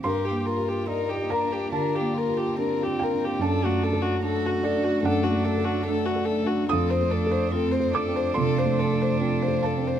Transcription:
<<
  \new Staff \with { instrumentName = "Marimba" } { \time 4/4 \key g \minor \tempo 4 = 72 g'16 bes'16 bes'16 bes'16 g'16 d''16 bes'16 bes'16 g'16 f''16 bes'16 r16 g'16 f''16 f''16 f''16 | d'16 fis'16 fis'16 fis'16 d'16 a'16 fis'16 fis'16 d'16 d''16 fis'16 r16 d'16 d''16 d''16 d''16 | f'16 a'16 a'16 r16 f'16 c''16 a'16 a'16 f'16 f''16 a'16 r16 f'16 f''16 f''16 r16 | }
  \new Staff \with { instrumentName = "Violin" } { \time 4/4 \key g \minor bes'16 g'16 bes'16 g'16 bes'16 g'16 bes'16 g'16 bes'16 g'16 bes'16 g'16 bes'16 g'16 bes'16 g'16 | a'16 fis'16 a'16 fis'16 a'16 fis'16 a'16 fis'16 a'16 fis'16 a'16 fis'16 a'16 fis'16 a'16 fis'16 | a'16 c''16 a'16 c''16 a'16 c''16 a'16 c''16 a'16 c''16 a'16 c''16 a'16 c''16 a'16 c''16 | }
  \new Staff \with { instrumentName = "Felt piano" } { \time 4/4 \key g \minor << { c'''4. bes''8 a''4. g''8 | a''4. d''8 fis''4. r8 | ees'''4. d'''8 c'''4. a''8 | } \\ { \tuplet 3/2 { g,8 bes8 g'8 d''8 g'8 d'8 d8 bes8 g'8 d'8 g'8 d'8 } | \tuplet 3/2 { fis,8 a8 a'8 d'8 a'8 d'8 fis,8 a8 a'8 d'8 a'8 d'8 } | \tuplet 3/2 { f,8 a8 a'8 c'8 a'8 c'8 c8 a8 a'8 c'8 a'8 c'8 } | } >> }
  \new Staff \with { instrumentName = "Ambient pad" } { \time 4/4 \key g \minor <bes f' d''>1 | <a d' a'>1 | <a c' a'>1 | }
  \new Staff \with { instrumentName = "Cello" } { \time 4/4 \key g \minor g'8 f'8 ees'8 d'8 d'8 f'8 c'4 | d'4 fis'4 d'4 a4 | c'8 d'8 c'8 d'2~ d'8 | }
>>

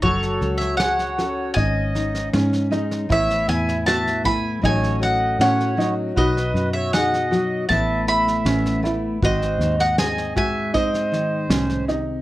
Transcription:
<<
  \new Staff \with { instrumentName = "Mandolin" } { \time 4/4 \key fis \dorian \tempo 4 = 78 cis''8. e''16 fis''4 gis''4 r4 | e''8 gis''8 a''8 b''8 gis''8 fis''8 fis''8. r16 | dis''8. e''16 fis''4 a''8 b''4 r8 | dis''8. fis''16 gis''8 gis''8 dis''4. r8 | }
  \new Staff \with { instrumentName = "Accordion" } { \time 4/4 \key fis \dorian a'8. cis''16 cis''4 dis''4 r4 | cis''8 e''8 e''8 gis''8 cis''8 dis''8 cis''8. r16 | b'8. cis''16 dis''4 e''8 e''4 r8 | bis'8. dis''16 dis''8 e''8 bis'4. r8 | }
  \new Staff \with { instrumentName = "Upright piano" } { \time 4/4 \key fis \dorian fis'4 gis'8 fis'8 dis'4 cis'8 dis'8 | e'4 fis'8 e'8 dis'4 cis'8 dis'8 | fis'4 gis'8 fis'8 r4 cis'8 e'8 | fis'4 gis'8 fis'8 dis'4 cis'8 dis'8 | }
  \new Staff \with { instrumentName = "Steel-string acoustic guitar" } { \time 4/4 \key fis \dorian << { fis'8 a'8 fis'8 a'8 cis'8 dis'8 cis'8 dis'8 | b8 e'8 b8 e'8 <fis cis' fis' a'>8 fis'8 cis'8 fis'8 | dis'8 fis'8 dis'8 fis'8 <a b e' b'>8 e'8 b8 e'8 | bis8 dis'8 bis4 bis2 | } \\ { fis4. cis'8 gis,4. gis8 | a,4. a8 a,4. fis8 | b,4. fis8 a,4. a8 | gis,4. gis4 dis8 a,8 bis,8 | } >> }
  \new Staff \with { instrumentName = "Fingered electric bass" } { \clef bass \time 4/4 \key fis \dorian fis,,8 cis,4. gis,,4 gis,4 | a,,8 e,4. a,,4 a,4 | b,,8 fis,4. a,,4 a,,4 | gis,,8 dis,2 r8 bis,,4 | }
  \new DrumStaff \with { instrumentName = "Drums" } \drummode { \time 4/4 <bd sn>16 sn16 sn16 sn16 sn16 sn16 sn8 <bd sn>8 sn16 sn16 sn16 sn16 sn16 sn16 | <bd sn>16 sn16 sn16 sn16 sn16 sn16 <bd sn>8 <bd sn>16 sn16 sn8 sn16 sn16 sn8 | <bd sn>16 sn16 sn8 sn16 sn16 sn8 <bd sn>8 sn16 sn16 sn16 sn16 sn8 | <bd sn>16 sn16 sn16 sn16 sn16 sn16 <bd sn>8 <bd sn>16 sn16 sn8 sn16 sn16 sn8 | }
>>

